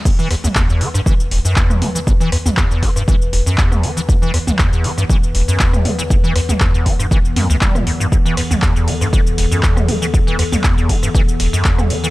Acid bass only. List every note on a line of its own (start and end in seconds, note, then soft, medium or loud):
0.05 0.10 E2 medium
0.19 0.28 E3 loud
0.31 0.35 E2 medium
0.44 0.48 E2 medium
0.56 0.67 E2 medium
0.69 0.82 E2 medium
0.81 0.88 E3 medium
0.94 1.01 G2 medium
1.06 1.14 E3 loud
1.31 1.39 E1 loud
1.45 1.54 F#2 medium
1.57 1.83 E2 medium
1.82 1.89 E3 medium
1.95 1.99 E3 medium
2.07 2.11 E2 medium
2.20 2.30 E3 loud
2.32 2.37 E2 medium
2.46 2.50 E2 medium
2.57 2.68 E2 medium
2.71 2.84 E2 medium
2.83 2.90 E3 medium
2.96 3.03 G2 medium
3.08 3.15 E3 loud
3.33 3.40 E1 loud
3.46 3.56 F#2 medium
3.58 3.85 E2 medium
3.83 3.91 E3 medium
3.97 4.01 E3 medium
4.09 4.13 E2 medium
4.22 4.32 E3 loud
4.34 4.38 E2 medium
4.47 4.51 E2 medium
4.59 4.70 E2 medium
4.72 4.86 E2 medium
4.84 4.92 E3 medium
4.98 5.04 G2 medium
5.10 5.17 E3 loud
5.35 5.42 E1 loud
5.48 5.58 F#2 medium
5.60 5.87 E2 medium
5.85 5.93 E3 medium
5.99 6.02 E3 medium
6.10 6.15 E2 medium
6.24 6.33 E3 loud
6.36 6.40 E2 medium
6.49 6.53 E2 medium
6.61 6.72 E2 medium
6.74 6.87 E2 medium
6.86 6.93 E3 medium
6.99 7.06 G2 medium
7.11 7.19 E3 loud
7.36 7.47 F#2 medium
7.50 7.56 D2 loud
7.62 7.76 G3 medium
7.75 7.85 A2 medium
7.87 7.91 E2 medium
8.00 8.07 G2 medium
8.12 8.16 E2 medium
8.25 8.35 E3 loud
8.37 8.42 E2 medium
8.51 8.55 E2 medium
8.62 8.74 E2 medium
8.76 8.89 E2 medium
8.88 8.95 E3 medium
9.01 9.08 G2 medium
9.13 9.20 E3 loud
9.38 9.45 E1 loud
9.51 9.61 F#2 medium
9.63 9.90 E2 medium
9.89 9.96 E3 medium
10.02 10.06 E3 medium
10.14 10.18 E2 medium
10.27 10.37 E3 loud
10.39 10.43 E2 medium
10.52 10.56 E2 medium
10.64 10.75 E2 medium
10.78 10.91 E2 medium
10.89 10.97 E3 medium
11.03 11.09 G2 medium
11.15 11.22 E3 loud
11.40 11.47 E1 loud
11.53 11.63 F#2 medium
11.65 11.92 E2 medium
11.90 11.98 E3 medium
12.04 12.07 E3 medium